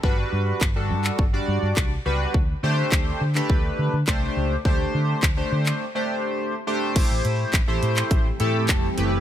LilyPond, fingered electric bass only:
\new Staff \with { instrumentName = "Fingered electric bass" } { \clef bass \time 4/4 \key d \mixolydian \tempo 4 = 104 g,,8 g,8 g,,8 g,8 g,,8 g,16 g,16 c,8 cis,8 | d,8 d8 d,8 d8 d,8 d16 d16 c,8 cis,8 | d,8 d8 d,8 d8 r2 | a,,16 a,,16 a,8 a,,16 a,,16 a,8 a,,8 a,8 f,,8 fis,,8 | }